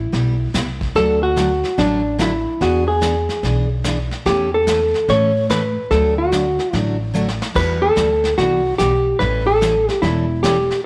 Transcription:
Already playing: hollow-body jazz guitar E4
0.12 upright bass B1, steel-string acoustic guitar G3 B3 E4 G4, brush sweep, kick, snare
0.54 upright bass C2, steel-string acoustic guitar G3 B3 E4 G4, kick, snare, hi-hat pedal
0.81 kick, snare
0.95 upright bass D2, steel-string acoustic guitar D3 F#3 A3 D4 F#4, hollow-body jazz guitar A4, brush sweep, kick, snare
1.23 hollow-body jazz guitar F#4
1.36 steel-string acoustic guitar D3 F#3 A3 D4 F#4, kick, snare, hi-hat pedal
1.64 snare
1.77 upright bass A1, steel-string acoustic guitar D3 F#3 A3 D4 F#4, hollow-body jazz guitar D4, brush sweep, kick, snare
2.18 steel-string acoustic guitar D3 F#3 A3 D4 F#4, hollow-body jazz guitar E4, kick, snare, hi-hat pedal
2.61 upright bass E2, steel-string acoustic guitar E3 B3 D4 G#4, hollow-body jazz guitar F#4, brush sweep, kick, snare
2.88 hollow-body jazz guitar G#4
3.01 steel-string acoustic guitar E3 B3 D4 G#4, kick, snare, hi-hat pedal
3.29 snare
3.43 upright bass B1, steel-string acoustic guitar E3 B3 D4 G#4, brush sweep, kick, snare
3.84 steel-string acoustic guitar E3 B3 D4 G#4, kick, snare, hi-hat pedal
4.11 snare
4.26 upright bass E2, steel-string acoustic guitar E3 A3 C#4 E4 A4, hollow-body jazz guitar G4, brush sweep, kick, snare
4.54 hollow-body jazz guitar A4
4.67 steel-string acoustic guitar E3 A3 C#4 E4 A4, kick, snare, hi-hat pedal
4.94 snare
5.08 upright bass A2, steel-string acoustic guitar E3 A3 C#4 E4 A4, hollow-body jazz guitar C#5, brush sweep, kick, snare
5.50 steel-string acoustic guitar E3 A3 C#4 E4 A4, hollow-body jazz guitar B4, kick, snare, hi-hat pedal
5.91 upright bass D2, steel-string acoustic guitar D3 F#3 A3 D4 F#4, hollow-body jazz guitar A4, brush sweep, kick, snare
6.18 hollow-body jazz guitar F#4
6.32 steel-string acoustic guitar D3 F#3 A3 D4 F#4, kick, snare, hi-hat pedal
6.59 snare
6.73 upright bass A1, steel-string acoustic guitar D3 F#3 A3 D4 F#4, hollow-body jazz guitar E4, brush sweep, kick, snare
7.14 steel-string acoustic guitar D3 F#3 A3 D4 F#4, hi-hat pedal
7.28 snare
7.42 snare
7.54 upright bass E2, steel-string acoustic guitar E3 G3 B3 F#4, hollow-body jazz guitar B4, brush sweep, kick, snare, crash
7.82 hollow-body jazz guitar A4
7.96 upright bass D2, steel-string acoustic guitar E3 G3 B3 F#4, kick, snare, hi-hat pedal
8.24 snare
8.38 upright bass C2, steel-string acoustic guitar E3 G3 B3 F#4, hollow-body jazz guitar F#4, brush sweep, kick, snare
8.78 upright bass B1, steel-string acoustic guitar E3 G3 B3 F#4, hollow-body jazz guitar G4, kick, snare, hi-hat pedal
9.19 upright bass A1, steel-string acoustic guitar E3 G3 C#4 E4 A4, hollow-body jazz guitar B4, brush sweep, kick, snare
9.47 hollow-body jazz guitar A4
9.61 steel-string acoustic guitar E3 G3 C#4 E4 A4, kick, snare, hi-hat pedal
9.88 hollow-body jazz guitar G4, snare
10.02 upright bass E1, steel-string acoustic guitar E3 G3 C#4 E4 A4, hollow-body jazz guitar E4, brush sweep, kick, snare
10.43 steel-string acoustic guitar E3 G3 C#4 E4 A4, hollow-body jazz guitar G4, kick, snare, hi-hat pedal
10.71 snare

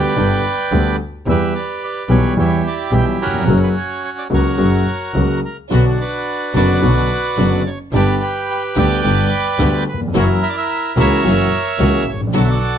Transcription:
Already playing: grand piano D2 D3 G3 B3 G4, double bass D2, bandoneon G4 B4 D5 G5
0.17 grand piano G1 G2 D3 G3 B3 G4, double bass G1
0.71 double bass D2, grand piano D2 D3 G3 B3 G4
1.26 double bass E2, grand piano E2 E3 G3 B3 G4, bandoneon G4 B4 E5
1.55 bandoneon D5
1.84 bandoneon D5
2.09 double bass B1, grand piano B1 B2 E3 G3 B3 G4, bandoneon C#5
2.36 double bass E2, grand piano E2 E3 G3 B3 G4, bandoneon E4 G4 C#5
2.67 bandoneon D5
2.92 double bass B1, grand piano B1 B2 E3 G3 B3 G4, bandoneon G5
3.22 bandoneon C#4 F#4 A#4
3.26 grand piano D#2
3.34 grand piano E2
3.41 grand piano F2
3.47 double bass F#1, grand piano F#2 C#3 F#3 A#3 F#4
3.63 bandoneon B4
3.77 bandoneon C#5
4.04 bandoneon C#5
4.18 bandoneon D5
4.30 grand piano C#2 C#3 F#3 A#3 F#4, double bass C#2, bandoneon A#4 C#5
4.34 bandoneon F#4
4.58 double bass F#1, grand piano F#2 C#3 F#3 A#3 F#4
5.14 double bass C#2, grand piano C#2 C#3 F#3 A#3 F#4
5.45 bandoneon A#4
5.70 grand piano B1 B2 D3 F#3 B3 F#4, double bass B1, string section B3 D4 F#4, bandoneon D4 F#4 B4
6.00 bandoneon F#4 B4 D5
6.54 grand piano F#1 F#2 D3 F#3 B3 F#4, double bass F#1, string section B3 D4 F#4, bandoneon F#4 B4 D5
6.82 grand piano B1 B2 D3 F#3 B3 F#4, double bass B1, string section B3 D4 F#4
7.37 grand piano F#1 F#2 D3 F#3 B3 F#4, double bass F#1, string section B3 D4 F#4
7.66 bandoneon C#5
7.93 double bass G1, grand piano G1 G2 D3 G3 B3 G4, string section B3 D4 G4, bandoneon G4 B4 D5
8.23 bandoneon G5
8.51 bandoneon G5
8.76 double bass D2, grand piano D2 D3 G3 B3 G4, string section B3 D4 G4, bandoneon B4 D5 G5
9.04 double bass G1, grand piano G1 G2 D3 G3 B3 G4, string section B3 D4 G4
9.59 double bass D2, grand piano D2 D3 G3 B3 G4, string section B3 D4 G4
9.89 bandoneon B4
9.94 grand piano D#2
10.01 grand piano E2
10.08 grand piano F2
10.13 double bass F#1, grand piano F#2 E3 F#3 A#3 C#4 F#4, string section A#3 E4 F#4, bandoneon A#4 C#5
10.17 bandoneon E4
10.43 bandoneon E5
10.50 bandoneon D5
10.58 bandoneon E5
10.96 double bass C#2, grand piano C#2 C#3 E3 A#3 C#4 F#4, string section A#3 E4 F#4, bandoneon A#4
11.00 bandoneon C#5 E5
11.23 double bass F#1, grand piano F#2 E3 F#3 A#3 C#4 F#4, string section A#3 E4 F#4
11.78 double bass C#2, grand piano C#2 C#3 E3 A#3 C#4 F#4, string section A#3 E4 F#4
12.07 double bass A1, bandoneon C#5
12.14 grand piano G#1
12.21 grand piano A1
12.27 grand piano A#1
12.33 double bass B1, grand piano B2 D3 F#3, string section B3 D4 F#4, bandoneon F#4
12.37 bandoneon A4 D5
12.43 bandoneon E5
12.51 bandoneon D5

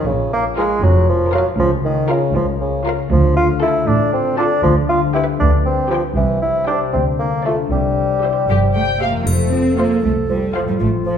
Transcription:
Already playing: harp F3 C#4 F4 C#5 F5
0.06 double bass section A#1, cello section A#2, harp A#2, bassoon C#3
0.32 bassoon A#3, harp C#4
0.57 bassoon G#3, harp F4, viola section F4, violin section A#4 F5
0.83 double bass section F1, cello section F2, bassoon F#3, harp A#4
1.08 bassoon F3, harp C#5
1.32 bassoon F#3, viola section F4, violin section A#4 F5, harp A#4
1.59 double bass section C#2, cello section C#2, harp C#3, bassoon F3
1.84 bassoon D#3, harp C#4
2.09 bassoon C#3, harp F4, viola section F4, violin section A#4 F5
2.35 double bass section C#2, cello section C#2, bassoon F3, harp A#4
2.61 bassoon C#3, harp C#5
2.85 viola section F4, violin section A#4 F5, harp A#4
3.11 cello section D2, double bass section D2, harp D3, bassoon F3
3.36 harp A3, bassoon F4
3.62 bassoon E4, viola section F4, harp F4, violin section A4 A5
3.87 double bass section A1, cello section A2, bassoon D4, harp A4
4.12 bassoon C4, harp F4
4.38 bassoon D4, viola section F4, harp A4, violin section A4 A5
4.63 cello section D2, double bass section D2, harp D3, bassoon F3
4.89 harp G3, bassoon F4
5.14 bassoon E4, viola section G4, harp G4, violin section B4 G5
5.40 double bass section D2, cello section D2, bassoon D4, harp B4
5.65 bassoon C4, harp G4
5.91 bassoon F3, viola section G4, violin section B4 G5, harp B4
6.16 cello section C2, double bass section C2, harp C3, bassoon E3
6.42 harp G3, bassoon E4
6.66 bassoon D4, harp G4 C5, viola section G4, violin section C5 G5
6.93 cello section D2, double bass section D2, harp D3, bassoon C4
7.19 bassoon A#3, harp D4
7.45 bassoon A3, harp D4 A4, viola section F4, violin section A4 D5
7.71 double bass section C2, cello section C2, harp C3, bassoon G3
7.97 harp G3
8.23 harp E4, viola section G4, violin section C5 E5
8.49 double bass section G1, cello section G2 F3, violin section G4, harp C5
8.75 cello section A3, harp G4, violin section G5
9.00 cello section A#3, viola section G4, harp C5, violin section E5 F5
9.09 harp F2
9.13 harp F3
9.18 harp F4
9.22 clarinet A4, harp C5
9.26 double bass section F1, cello section A3, triangle
9.52 bassoon F3, cello section C4, flute section C5
9.78 bassoon F3, cello section A#3, viola section F4, flute section C5, violin section C5 F5
10.04 double bass section C2, cello section A3
10.29 bassoon F3, cello section G3, flute section C5
10.55 cello section F3, bassoon F3, viola section F4, violin section C5 F5, flute section C5
10.63 harp A2
10.67 harp F3, cello section G3
10.72 harp F4
10.76 clarinet F4, harp C5
10.80 double bass section A1, cello section A3
11.06 cello section F3, bassoon F3, flute section C5

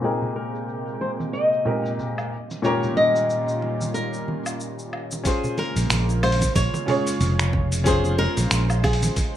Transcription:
0.02 grand piano A#2 C4 D#4 A#4 G5, analog synth pad C3 G#3 A#3 G5, nylon-string guitar G#4, cabasa
0.22 low conga, cabasa
0.36 nylon-string guitar A#4
0.55 cabasa
0.69 cabasa
0.88 cabasa
1.01 nylon-string guitar C5, muted conga
1.20 high conga, cabasa
1.33 nylon-string guitar D#5, cabasa
1.53 cabasa
1.65 grand piano A#2 C4 D#4 G4 A#4, low conga
1.86 cabasa
1.99 low conga, cabasa
2.18 cabasa, low woodblock
2.32 analog synth pad A#2 D#3 G3 C#4 F4
2.51 muted conga, cabasa
2.62 grand piano A#2 C#4 F4 G4 A#4, nylon-string guitar C#5, cabasa
2.83 low conga, cabasa
2.97 nylon-string guitar D#5
3.16 cabasa
3.30 cabasa
3.49 cabasa
3.62 muted conga
3.81 high conga, cabasa
3.94 nylon-string guitar A#4, cabasa
4.14 cabasa
4.28 high conga
4.46 cabasa, low woodblock
4.60 cabasa
4.79 cabasa
4.93 low woodblock
5.11 muted conga, cabasa
5.24 analog synth pad C#3 G#3 A#3 F4, grand piano C#4 F4 G#4 C5, nylon-string guitar G#4, kick, open hi-hat, cabasa
5.44 low conga, cabasa
5.57 nylon-string guitar A#4, open hi-hat, muted conga
5.76 fingered electric bass A#1, open hi-hat, cabasa
5.90 fingered electric bass A#1, finger snap, open hi-hat, muted conga, cabasa
6.09 cabasa
6.23 nylon-string guitar C5, open hi-hat, low woodblock
6.32 open hi-hat
6.41 kick, open hi-hat, muted conga, high conga, cabasa
6.56 fingered electric bass A#1, nylon-string guitar C#5, kick, open hi-hat, cabasa
6.74 muted conga, cabasa
6.86 grand piano C#4 F4 G#4 C#5, open hi-hat, low conga
7.07 open hi-hat, cabasa
7.21 fingered electric bass F1, open hi-hat, muted conga, low conga, cabasa
7.39 finger snap, cabasa
7.53 kick, muted conga
7.72 open hi-hat, cabasa
7.84 grand piano C#4 F4 G#4 C5, nylon-string guitar G#4, analog synth pad C5, kick, open hi-hat, cabasa
8.04 muted conga, cabasa
8.18 nylon-string guitar A#4, open hi-hat
8.37 fingered electric bass A#1, open hi-hat, muted conga, cabasa
8.51 fingered electric bass A#1, finger snap, open hi-hat, cabasa
8.70 cabasa, low woodblock
8.84 nylon-string guitar G#4, kick, open hi-hat, muted conga, low woodblock
8.93 open hi-hat
9.03 open hi-hat, high conga, cabasa
9.16 kick, open hi-hat, muted conga, cabasa

